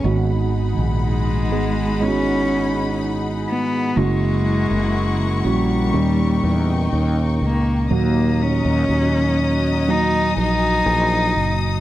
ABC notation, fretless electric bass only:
X:1
M:4/4
L:1/16
Q:1/4=61
K:D#phr
V:1 name="Fretless electric bass" clef=bass
G,,,3 A,,,3 G,,,8 z2 | F,,,3 F,,,3 A,,,2 D,,2 E,,2 D,,2 C,,2 | D,,3 D,, D,,6 A,,,2 A,,,2 F,,,2 |]